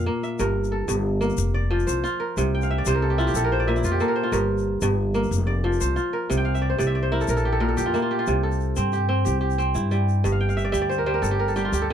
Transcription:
0.00 0.45 A#2 medium
0.00 0.44 D4 medium
0.00 0.89 F5 medium
0.00 0.50 G5 medium
0.06 0.78 A#3 medium
0.23 1.27 E5 medium
0.23 shaker soft
0.39 0.85 G1 medium
0.39 0.87 G2 medium
0.39 1.67 A#4 medium
0.39 shaker medium
0.64 shaker soft
0.72 1.27 A4 medium
0.88 1.34 G1 medium
0.88 1.43 G2 medium
0.88 shaker medium
1.21 3.08 A#3 medium
1.21 shaker soft
1.30 shaker soft
1.37 1.83 F1 loud
1.37 shaker medium
1.54 2.65 D5 medium
1.71 2.41 F3 medium
1.79 shaker soft
1.87 2.02 C2 medium
1.87 2.86 C5 medium
1.87 shaker medium
2.04 2.77 F4 medium
2.04 shaker soft
2.20 2.94 A#4 medium
2.37 2.82 C2 medium
2.37 2.86 C3 medium
2.37 shaker medium
2.54 3.48 G5 medium
2.62 3.24 F5 medium
2.62 shaker soft
2.71 3.24 E5 medium
2.78 3.59 D5 medium
2.86 3.31 C2 loud
2.86 3.40 C3 medium
2.86 3.52 C5 medium
2.86 shaker medium
2.95 3.42 A#4 medium
3.02 3.36 A4 medium
3.10 3.27 G4 medium
3.18 3.76 E4 medium
3.18 3.73 F4 medium
3.18 shaker soft
3.27 3.91 G4 medium
3.27 shaker soft
3.34 3.79 A#1 loud
3.34 3.74 A4 medium
3.34 shaker medium
3.44 4.07 A#4 medium
3.52 4.15 C5 medium
3.60 4.70 D5 medium
3.67 4.38 A#2 medium
3.67 3.90 E5 medium
3.76 4.29 E4 medium
3.76 shaker soft
3.84 3.99 F2 medium
3.84 4.23 F4 medium
3.84 shaker medium
3.92 5.33 G4 medium
4.00 5.14 A#3 medium
4.00 4.38 A4 medium
4.00 shaker soft
4.08 4.32 A#4 medium
4.16 5.34 C5 medium
4.23 5.75 F4 medium
4.32 4.78 G1 medium
4.32 4.81 G2 medium
4.32 5.60 A#4 medium
4.32 shaker medium
4.58 shaker soft
4.82 5.27 G1 loud
4.82 5.36 G2 medium
4.82 shaker medium
5.14 7.07 A#3 medium
5.14 shaker soft
5.23 shaker soft
5.31 5.76 F1 loud
5.31 shaker medium
5.47 6.58 D5 medium
5.64 6.35 F3 medium
5.73 shaker soft
5.81 5.96 C2 loud
5.81 6.69 C5 medium
5.81 shaker medium
5.96 6.61 F4 medium
5.96 shaker soft
6.13 7.11 A#4 medium
6.30 6.75 C2 medium
6.30 6.77 C3 medium
6.30 shaker medium
6.37 7.31 G5 medium
6.45 6.93 F5 medium
6.55 6.86 E5 medium
6.55 shaker soft
6.62 6.79 D5 medium
6.70 7.02 C5 medium
6.78 7.24 C2 loud
6.78 7.33 C3 medium
6.78 6.95 D5 medium
6.78 shaker medium
6.87 7.92 E5 medium
6.95 8.06 D5 medium
7.03 8.21 C5 medium
7.12 7.92 E4 medium
7.12 7.29 A#4 medium
7.21 7.36 A4 medium
7.21 shaker soft
7.28 7.74 A#1 medium
7.28 7.58 A#4 medium
7.28 shaker medium
7.37 7.52 A4 medium
7.37 shaker soft
7.45 7.77 G4 medium
7.52 7.68 A4 medium
7.60 8.32 A#2 medium
7.60 8.49 A#4 medium
7.69 8.00 A4 medium
7.77 7.93 F2 medium
7.77 8.10 G4 medium
7.77 shaker medium
7.86 8.02 F4 medium
7.94 8.49 A#3 medium
7.94 8.25 E4 medium
7.94 shaker soft
8.02 8.19 F4 medium
8.11 8.93 G4 medium
8.19 9.70 F4 medium
8.27 8.72 C2 medium
8.27 10.29 C3 medium
8.27 shaker soft
8.43 9.75 A4 medium
8.52 shaker soft
8.60 shaker soft
8.76 9.22 G2 loud
8.76 9.08 C4 medium
8.76 shaker soft
8.93 9.24 G4 medium
8.93 shaker soft
9.09 9.58 C4 medium
9.25 9.71 C2 loud
9.25 9.40 G4 medium
9.25 shaker medium
9.41 10.82 G4 medium
9.50 shaker soft
9.58 11.38 C4 medium
9.58 shaker soft
9.75 10.20 G2 medium
9.75 10.38 E4 medium
9.75 shaker medium
9.91 10.29 G3 medium
9.91 shaker soft
10.09 shaker soft
10.24 10.70 G1 medium
10.24 11.93 G2 medium
10.24 shaker soft
10.32 10.48 F5 medium
10.40 11.34 G5 medium
10.49 10.78 F5 medium
10.49 shaker soft
10.57 10.72 E5 medium
10.57 shaker soft
10.65 10.81 D5 medium
10.72 11.19 D2 loud
10.72 11.05 G3 medium
10.72 11.71 E5 medium
10.72 shaker medium
10.81 11.92 D5 medium
10.89 11.06 C5 medium
10.89 shaker soft
10.98 11.14 A#4 medium
11.06 11.55 G3 medium
11.06 11.93 C5 medium
11.14 11.39 A#4 medium
11.22 11.68 G1 loud
11.22 11.45 A4 medium
11.22 shaker medium
11.31 11.56 G4 medium
11.39 11.88 A#4 medium
11.48 11.81 A4 medium
11.48 shaker soft
11.56 11.93 G3 medium
11.56 11.73 G4 medium
11.56 shaker soft
11.65 11.93 F4 medium
11.72 11.93 D2 medium
11.72 11.90 G4 medium
11.72 shaker medium
11.82 11.93 A4 medium

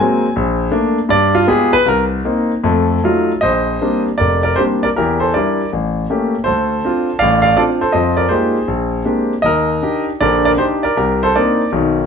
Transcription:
0.00 0.25 F#3 medium
0.00 0.25 G#3 medium
0.00 0.25 A#3 medium
0.00 0.26 C4 medium
0.00 0.33 G#5 loud
0.36 0.68 A#1 medium
0.72 0.98 A3 medium
0.72 0.98 A#3 soft
0.72 0.98 D4 medium
1.09 1.42 G2 medium
1.09 1.34 D5 loud
1.35 1.47 F4 medium
1.47 1.74 G#3 medium
1.47 1.74 B3 medium
1.47 1.74 F4 medium
1.47 1.74 G4 medium
1.47 1.72 G#4 medium
1.73 1.86 B4 loud
1.86 2.19 C2 medium
1.86 2.02 A#4 medium
2.25 2.51 A#3 medium
2.25 2.51 C4 medium
2.25 2.51 D#4 medium
2.64 2.98 F2 medium
2.64 2.98 A3 medium
3.04 3.30 F#3 medium
3.04 3.31 A3 medium
3.04 3.31 D#4 medium
3.04 3.31 F4 medium
3.41 3.76 A#1 medium
3.41 4.02 C5 medium
3.41 4.01 D#5 medium
3.81 4.07 G3 soft
3.81 4.07 A#3 soft
3.81 4.08 C4 soft
3.81 4.08 D4 medium
4.18 4.53 F1 medium
4.18 4.42 A#4 medium
4.18 4.41 D5 medium
4.43 4.57 A#4 medium
4.43 4.57 D5 medium
4.56 4.84 G3 soft
4.56 4.84 A#3 soft
4.56 4.84 C4 soft
4.56 4.84 D4 medium
4.56 4.63 G4 medium
4.56 4.62 C5 medium
4.83 4.89 A#4 medium
4.83 4.88 D5 medium
4.96 5.29 E2 medium
4.96 5.29 E3 medium
4.96 5.20 G4 medium
4.96 5.19 A#4 medium
5.20 5.33 A4 medium
5.20 5.34 C5 medium
5.34 5.60 G3 soft
5.34 5.61 D4 soft
5.34 5.61 E4 medium
5.34 5.68 A#4 medium
5.34 5.69 D5 medium
5.73 6.04 A1 medium
6.10 6.35 A3 medium
6.10 6.34 A#3 soft
6.10 6.34 C#4 soft
6.10 6.35 G4 medium
6.44 6.79 D2 medium
6.44 7.15 A4 medium
6.44 7.14 C5 medium
6.85 7.09 C4 medium
6.85 7.09 D4 soft
6.85 7.09 F4 medium
7.19 7.52 A1 medium
7.19 7.53 A2 medium
7.19 7.41 D5 medium
7.19 7.41 F5 loud
7.42 7.55 D5 medium
7.42 7.56 F5 loud
7.56 7.82 C4 medium
7.56 7.82 D4 soft
7.56 7.82 F4 medium
7.56 7.62 A4 medium
7.56 7.62 D5 medium
7.81 7.93 A4 medium
7.81 7.92 C5 medium
7.92 8.25 F2 medium
7.92 8.25 F3 medium
7.92 8.15 C5 medium
7.92 8.17 D#5 medium
8.17 8.29 A#4 medium
8.17 8.30 D5 medium
8.29 8.56 G#3 soft
8.29 8.56 A#3 soft
8.29 8.57 D#4 soft
8.29 8.57 F4 soft
8.29 8.56 G4 medium
8.29 8.65 G#4 soft
8.29 8.64 C5 medium
8.68 9.01 A#1 medium
9.05 9.32 G#3 soft
9.05 9.32 A#3 soft
9.05 9.32 C4 soft
9.05 9.32 D4 soft
9.05 9.32 G4 medium
9.42 9.78 D#2 medium
9.42 10.05 A#4 medium
9.42 10.03 D#5 medium
9.83 10.09 D4 medium
9.83 10.09 D#4 soft
9.83 10.09 G4 medium
10.20 10.54 A#1 medium
10.20 10.54 D3 medium
10.20 10.45 A#4 medium
10.20 10.44 D5 medium
10.45 10.52 A#4 medium
10.45 10.50 D5 medium
10.57 10.84 D4 soft
10.57 10.84 D#4 soft
10.57 10.85 G4 medium
10.57 10.64 C5 medium
10.83 10.96 A#4 medium
10.83 10.97 D5 medium
10.97 11.30 C2 medium
10.97 11.20 G4 medium
10.97 11.22 A#4 medium
11.23 11.35 A4 medium
11.23 11.36 C5 medium
11.36 11.61 A#3 medium
11.36 11.61 C4 soft
11.36 11.61 D4 soft
11.36 11.61 D#4 medium
11.36 11.70 A#4 medium
11.36 11.70 D5 medium
11.72 12.04 B1 medium
11.72 12.04 D#3 medium

